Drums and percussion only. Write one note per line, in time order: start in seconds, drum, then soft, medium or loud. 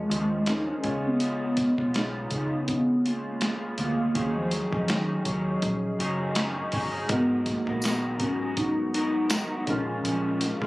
0.11 closed hi-hat medium
0.46 snare medium
0.46 closed hi-hat medium
0.84 kick loud
0.84 closed hi-hat medium
1.20 closed hi-hat medium
1.57 kick medium
1.57 snare soft
1.57 closed hi-hat medium
1.78 kick medium
1.94 snare loud
1.94 closed hi-hat medium
2.31 kick medium
2.31 closed hi-hat medium
2.68 kick medium
2.68 closed hi-hat medium
3.06 closed hi-hat medium
3.41 snare medium
3.41 closed hi-hat medium
3.78 closed hi-hat medium
4.15 kick loud
4.15 closed hi-hat medium
4.51 snare soft
4.51 closed hi-hat medium
4.73 kick medium
4.88 snare loud
4.88 closed hi-hat medium
5.25 kick medium
5.25 closed hi-hat medium
5.62 kick medium
5.62 closed hi-hat medium
6.00 closed hi-hat medium
6.35 snare medium
6.35 closed hi-hat medium
6.72 kick medium
6.72 open hi-hat soft
7.09 kick loud
7.09 closed hi-hat medium
7.46 kick medium
7.46 snare soft
7.46 closed hi-hat medium
7.67 kick medium
7.82 snare loud
7.82 closed hi-hat medium
7.82 tambourine medium
8.20 kick medium
8.20 closed hi-hat medium
8.57 kick medium
8.57 closed hi-hat medium
8.94 closed hi-hat medium
9.30 snare medium
9.30 closed hi-hat medium
9.30 tambourine medium
9.67 kick loud
9.67 closed hi-hat medium
10.05 closed hi-hat medium
10.41 snare soft
10.41 closed hi-hat medium
10.62 kick medium